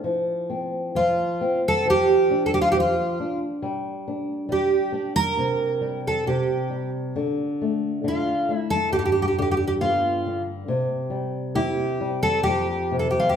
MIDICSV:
0, 0, Header, 1, 3, 480
1, 0, Start_track
1, 0, Key_signature, -1, "major"
1, 0, Tempo, 913242
1, 23, Time_signature, 2, 2, 24, 8
1, 982, Tempo, 870827
1, 2422, Tempo, 891530
1, 4342, Tempo, 874636
1, 6262, Tempo, 911854
1, 7217, End_track
2, 0, Start_track
2, 0, Title_t, "Twelve-string acoustic guitar"
2, 0, Program_c, 0, 25
2, 506, Note_on_c, 0, 65, 71
2, 841, Note_off_c, 0, 65, 0
2, 884, Note_on_c, 0, 69, 100
2, 996, Note_off_c, 0, 69, 0
2, 999, Note_on_c, 0, 67, 99
2, 1296, Note_off_c, 0, 67, 0
2, 1309, Note_on_c, 0, 69, 77
2, 1342, Note_off_c, 0, 69, 0
2, 1352, Note_on_c, 0, 67, 82
2, 1388, Note_off_c, 0, 67, 0
2, 1394, Note_on_c, 0, 65, 89
2, 1433, Note_off_c, 0, 65, 0
2, 1450, Note_on_c, 0, 67, 85
2, 1484, Note_off_c, 0, 67, 0
2, 1496, Note_on_c, 0, 65, 76
2, 1818, Note_off_c, 0, 65, 0
2, 2443, Note_on_c, 0, 67, 74
2, 2785, Note_off_c, 0, 67, 0
2, 2787, Note_on_c, 0, 70, 107
2, 3239, Note_off_c, 0, 70, 0
2, 3280, Note_on_c, 0, 69, 83
2, 3379, Note_off_c, 0, 69, 0
2, 3387, Note_on_c, 0, 67, 64
2, 3721, Note_off_c, 0, 67, 0
2, 4360, Note_on_c, 0, 65, 70
2, 4618, Note_off_c, 0, 65, 0
2, 4618, Note_on_c, 0, 64, 70
2, 4702, Note_on_c, 0, 69, 97
2, 4724, Note_off_c, 0, 64, 0
2, 4822, Note_off_c, 0, 69, 0
2, 4825, Note_on_c, 0, 67, 84
2, 4852, Note_off_c, 0, 67, 0
2, 4858, Note_on_c, 0, 67, 67
2, 4889, Note_off_c, 0, 67, 0
2, 4895, Note_on_c, 0, 67, 72
2, 4925, Note_off_c, 0, 67, 0
2, 4931, Note_on_c, 0, 67, 59
2, 4974, Note_off_c, 0, 67, 0
2, 4987, Note_on_c, 0, 67, 67
2, 5011, Note_off_c, 0, 67, 0
2, 5017, Note_on_c, 0, 67, 52
2, 5057, Note_off_c, 0, 67, 0
2, 5076, Note_on_c, 0, 67, 59
2, 5089, Note_off_c, 0, 67, 0
2, 5096, Note_on_c, 0, 67, 59
2, 5136, Note_off_c, 0, 67, 0
2, 5147, Note_on_c, 0, 67, 67
2, 5171, Note_off_c, 0, 67, 0
2, 5178, Note_on_c, 0, 67, 52
2, 5216, Note_off_c, 0, 67, 0
2, 5236, Note_on_c, 0, 67, 73
2, 5266, Note_off_c, 0, 67, 0
2, 5310, Note_on_c, 0, 65, 70
2, 5642, Note_off_c, 0, 65, 0
2, 6267, Note_on_c, 0, 67, 80
2, 6618, Note_off_c, 0, 67, 0
2, 6620, Note_on_c, 0, 69, 99
2, 6728, Note_off_c, 0, 69, 0
2, 6730, Note_on_c, 0, 67, 92
2, 7022, Note_off_c, 0, 67, 0
2, 7024, Note_on_c, 0, 69, 69
2, 7074, Note_off_c, 0, 69, 0
2, 7084, Note_on_c, 0, 67, 66
2, 7129, Note_off_c, 0, 67, 0
2, 7131, Note_on_c, 0, 65, 77
2, 7177, Note_off_c, 0, 65, 0
2, 7183, Note_on_c, 0, 67, 74
2, 7217, Note_off_c, 0, 67, 0
2, 7217, End_track
3, 0, Start_track
3, 0, Title_t, "Nylon-string guitar"
3, 0, Program_c, 1, 24
3, 21, Note_on_c, 1, 53, 54
3, 261, Note_on_c, 1, 60, 39
3, 494, Note_off_c, 1, 53, 0
3, 495, Note_off_c, 1, 60, 0
3, 500, Note_on_c, 1, 53, 47
3, 733, Note_off_c, 1, 53, 0
3, 741, Note_on_c, 1, 60, 46
3, 974, Note_off_c, 1, 60, 0
3, 974, Note_on_c, 1, 53, 57
3, 1222, Note_on_c, 1, 62, 47
3, 1460, Note_off_c, 1, 62, 0
3, 1461, Note_off_c, 1, 53, 0
3, 1467, Note_on_c, 1, 53, 53
3, 1700, Note_off_c, 1, 53, 0
3, 1715, Note_on_c, 1, 62, 46
3, 1942, Note_off_c, 1, 62, 0
3, 1950, Note_on_c, 1, 55, 54
3, 2199, Note_on_c, 1, 62, 43
3, 2419, Note_off_c, 1, 55, 0
3, 2423, Note_off_c, 1, 62, 0
3, 2425, Note_on_c, 1, 55, 56
3, 2652, Note_off_c, 1, 55, 0
3, 2660, Note_on_c, 1, 62, 41
3, 2890, Note_off_c, 1, 62, 0
3, 2903, Note_on_c, 1, 48, 50
3, 3138, Note_on_c, 1, 55, 43
3, 3364, Note_off_c, 1, 48, 0
3, 3368, Note_off_c, 1, 55, 0
3, 3384, Note_on_c, 1, 48, 60
3, 3617, Note_on_c, 1, 55, 38
3, 3849, Note_off_c, 1, 48, 0
3, 3853, Note_off_c, 1, 55, 0
3, 3863, Note_on_c, 1, 50, 54
3, 4109, Note_on_c, 1, 57, 37
3, 4332, Note_off_c, 1, 50, 0
3, 4338, Note_off_c, 1, 57, 0
3, 4338, Note_on_c, 1, 50, 49
3, 4574, Note_off_c, 1, 50, 0
3, 4584, Note_on_c, 1, 57, 43
3, 4818, Note_off_c, 1, 57, 0
3, 4823, Note_on_c, 1, 43, 54
3, 5076, Note_on_c, 1, 50, 44
3, 5303, Note_off_c, 1, 50, 0
3, 5308, Note_on_c, 1, 59, 53
3, 5537, Note_off_c, 1, 59, 0
3, 5557, Note_on_c, 1, 50, 46
3, 5758, Note_off_c, 1, 43, 0
3, 5781, Note_off_c, 1, 50, 0
3, 5789, Note_on_c, 1, 48, 64
3, 6018, Note_on_c, 1, 55, 51
3, 6254, Note_off_c, 1, 55, 0
3, 6265, Note_on_c, 1, 64, 58
3, 6492, Note_off_c, 1, 64, 0
3, 6504, Note_on_c, 1, 55, 49
3, 6719, Note_off_c, 1, 48, 0
3, 6732, Note_off_c, 1, 55, 0
3, 6743, Note_on_c, 1, 41, 58
3, 6983, Note_on_c, 1, 48, 47
3, 7217, Note_off_c, 1, 41, 0
3, 7217, Note_off_c, 1, 48, 0
3, 7217, End_track
0, 0, End_of_file